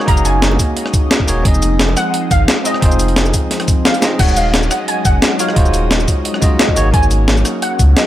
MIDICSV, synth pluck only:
0, 0, Header, 1, 2, 480
1, 0, Start_track
1, 0, Tempo, 342857
1, 112, Time_signature, 4, 2, 24, 8
1, 11292, End_track
2, 0, Start_track
2, 0, Title_t, "Synth pluck"
2, 0, Program_c, 0, 84
2, 113, Note_on_c, 0, 82, 107
2, 353, Note_on_c, 0, 80, 88
2, 360, Note_off_c, 0, 82, 0
2, 1257, Note_off_c, 0, 80, 0
2, 2751, Note_on_c, 0, 78, 113
2, 3237, Note_on_c, 0, 77, 108
2, 3246, Note_off_c, 0, 78, 0
2, 3720, Note_on_c, 0, 75, 92
2, 3729, Note_off_c, 0, 77, 0
2, 5340, Note_off_c, 0, 75, 0
2, 5392, Note_on_c, 0, 77, 100
2, 5838, Note_off_c, 0, 77, 0
2, 5870, Note_on_c, 0, 78, 113
2, 6115, Note_on_c, 0, 77, 108
2, 6119, Note_off_c, 0, 78, 0
2, 6595, Note_on_c, 0, 78, 99
2, 6608, Note_off_c, 0, 77, 0
2, 6702, Note_off_c, 0, 78, 0
2, 6836, Note_on_c, 0, 80, 113
2, 7076, Note_on_c, 0, 78, 116
2, 7081, Note_off_c, 0, 80, 0
2, 7555, Note_on_c, 0, 77, 111
2, 7569, Note_off_c, 0, 78, 0
2, 9230, Note_on_c, 0, 75, 92
2, 9284, Note_off_c, 0, 77, 0
2, 9678, Note_off_c, 0, 75, 0
2, 9711, Note_on_c, 0, 80, 108
2, 10381, Note_off_c, 0, 80, 0
2, 10674, Note_on_c, 0, 78, 103
2, 11120, Note_off_c, 0, 78, 0
2, 11153, Note_on_c, 0, 75, 93
2, 11292, Note_off_c, 0, 75, 0
2, 11292, End_track
0, 0, End_of_file